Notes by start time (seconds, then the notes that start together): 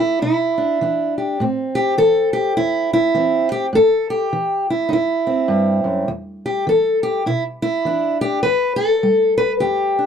Already playing: E3
0.00 E4
0.22 B2 E4
0.58 D4
0.81 E3 D4
1.18 G4
1.40 A2 C4
1.75 G4
1.98 E3 A4
2.33 G4
2.57 E2 E4
2.93 E4
3.15 E3 C4
3.52 G4
3.73 A2 A4
4.10 G4
4.33 E3
4.70 E4
4.89 E2 D#4
4.93 E4
5.27 C4
5.48 G2
5.84 F#2
6.08 E2
6.46 G4
6.67 E3 A4
7.03 G4
7.26 B2 E4
7.62 E4
7.85 E3 D4
8.21 G4
8.43 E2 B4
8.76 A4
9.03 G3
9.38 B4
9.60 E2 G4
9.99 D4